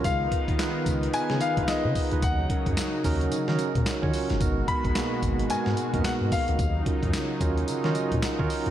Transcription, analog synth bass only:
X:1
M:4/4
L:1/16
Q:"Swing 16ths" 1/4=110
K:Ebm
V:1 name="Analog synth bass" clef=bass
D,,2 z E,, z2 D,,2 D, D, z D,, z D, z D,, | E,,2 z G,, z2 E,,2 z E, z B,, z E, z G,,, | A,,,2 z B,,, z2 A,,,2 A,, A,, z G,, z A,, z D,, | E,,2 z G,, z2 E,,2 E, E, z B,, z E, z C,, |]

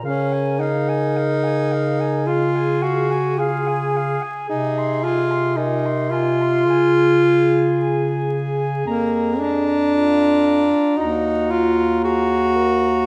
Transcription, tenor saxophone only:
X:1
M:4/4
L:1/8
Q:1/4=55
K:Db
V:1 name="Tenor saxophone"
D E3 F G A2 | E F E F4 z | B, =D3 E F G2 |]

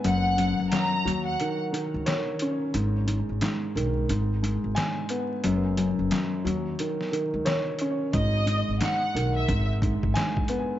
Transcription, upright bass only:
X:1
M:4/4
L:1/16
Q:"Swing 16ths" 1/4=89
K:G#m
V:1 name="Upright bass" clef=bass
F,,,3 F,,, z2 D,,2 z3 C,, z4 | G,,,3 G,,, z2 B,,,2 G,,,3 G,,, z4 | F,,,3 F,,, z2 D,,2 z3 C,, z4 | G,,,3 G,,, z2 B,,,2 G,,,3 G,,, z4 |]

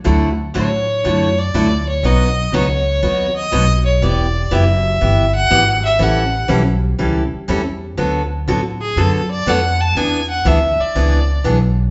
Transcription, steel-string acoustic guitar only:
X:1
M:4/4
L:1/8
Q:"Swing" 1/4=121
K:D
V:1 name="Steel-string acoustic guitar"
[D,F,A,EF] z [D,F,A,EF] z [D,F,A,EF] z [D,F,A,EF] z | [B,,F,B,^DF] z [B,,F,B,DF] z [B,,F,B,DF] z [B,,F,B,DF] z | [E,B,EG] z [E,B,EG] z [E,B,EG] z [E,B,EG] z | [E,G,CEA] z [E,G,CEA] z [E,G,CEA] z [E,G,CEA] z |
[D,F,B,FA] z [D,F,B,FA] z [D,F,B,FA] z [D,F,B,FA] z | [E,B,D^G] z [E,B,DG] z [E,B,DG] z [E,B,DG] z |]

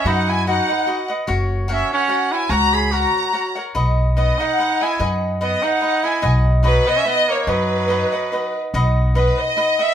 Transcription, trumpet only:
X:1
M:3/4
L:1/16
Q:"Swing" 1/4=145
K:B
V:1 name="Trumpet"
D2 E2 D6 z2 | z4 C2 C4 E2 | F2 G2 F6 z2 | z4 B,2 D4 E2 |
z4 B,2 D4 E2 | z4 F,2 B, C B,2 A,2 | F,8- F,2 z2 | z12 |]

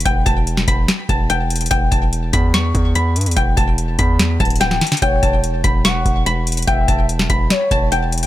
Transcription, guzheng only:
X:1
M:4/4
L:1/8
Q:1/4=145
K:Edor
V:1 name="Guzheng"
g a2 b z a g2 | g a2 b c'2 b z | g a2 b z a g2 | g a2 b c'2 b z |
g a2 b z a g2 |]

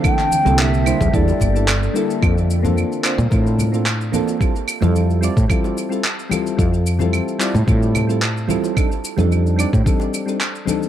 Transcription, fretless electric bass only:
X:1
M:4/4
L:1/16
Q:1/4=110
K:Bblyd
V:1 name="Fretless electric bass" clef=bass
z3 C,,3 z E,, E,, z G,,,3 z3 | F,,4 z3 B,, A,,6 z2 | z3 F,,3 z A,, z8 | F,,4 z3 A,, A,,6 z2 |
z3 F,,3 z A,, z8 |]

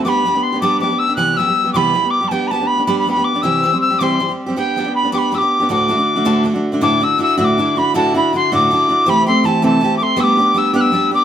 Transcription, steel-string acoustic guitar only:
X:1
M:6/8
L:1/16
Q:3/8=107
K:Dmix
V:1 name="Steel-string acoustic guitar"
[G,B,DG]2 [G,B,DG] [B,DG]2 [B,DG] [G,B,DG]2 [G,B,DG] [B,DG]2 [B,DG] | [C,E,G,B,G]2 [E,G,B,G] [G,B,G]2 [G,B,G] [C,E,G,B,G]2 [E,G,B,G] [G,B,G]2 [G,B,G] | [G,B,DG]2 [G,B,DG] [B,DG]2 [B,DG] [G,B,DG]2 [G,B,DG] [B,DG]2 [B,DG] | [C,E,G,CG]2 [E,G,CG] [G,CG]2 [G,CG] [C,E,G,CG]2 [E,G,CG] [G,CG]2 [G,CG] |
[G,B,DG]2 [G,B,DG] [B,DG]2 [B,DG] [G,B,DG]2 [G,B,DG] [B,DG]2 [B,DG] | [D,,A,,D,A,DF]2 [D,A,DF] [D,A,DF]2 [D,A,DF] [D,,A,,D,A,DF]2 [D,A,DF] [D,A,DF]2 [D,A,DF] | [D,,A,,D,DEF]2 [D,DEF]2 [D,DEF]2 [D,,A,,D,DEF]2 [D,DEF]2 [D,DEF]2 | [D,,A,,D,DEF]2 [D,DEF]2 [D,DEF]2 [D,,A,,D,DEF]2 [D,DEF]2 [D,DEF]2 |
[C,E,A,CG]2 [A,CG]2 [E,A,CG]2 [C,E,A,CG]2 [E,A,CG]2 [A,CG]2 | [G,B,DG]2 [B,DG]2 [G,B,DG]2 [G,B,DG]2 [G,B,DG]2 [B,DG]2 |]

